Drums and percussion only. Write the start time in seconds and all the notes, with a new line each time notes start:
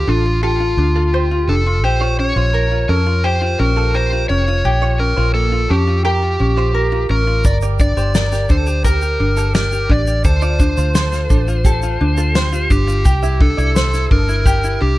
7.44 kick, shaker
7.62 shaker
7.79 kick, shaker
7.98 shaker
8.15 snare, shaker
8.32 snare, shaker
8.49 kick, shaker
8.67 shaker
8.85 kick, shaker
9.02 shaker
9.37 shaker
9.55 snare, shaker
9.72 shaker
9.90 kick
10.07 shaker
10.24 kick, shaker
10.42 shaker
10.60 kick, shaker
10.78 shaker
10.95 snare, shaker
11.13 snare, shaker
11.30 kick, shaker
11.48 shaker
11.65 kick, shaker
11.82 shaker
12.17 shaker
12.35 snare, shaker
12.53 shaker
12.70 kick, shaker
12.88 shaker
13.05 kick, shaker
13.23 shaker
13.41 kick
13.59 shaker
13.76 snare, shaker
13.94 snare, shaker
14.11 kick
14.29 shaker
14.46 kick, shaker
14.64 shaker